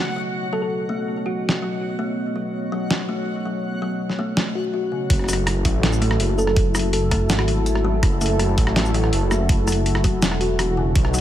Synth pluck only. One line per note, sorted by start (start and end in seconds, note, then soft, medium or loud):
0.53 0.59 A4 medium
0.62 0.68 A4 medium
1.26 1.77 F#4 medium
6.38 6.44 A4 medium
6.47 6.53 A4 medium
6.93 7.15 A4 medium
7.30 7.36 F#4 medium
7.39 7.45 F#4 medium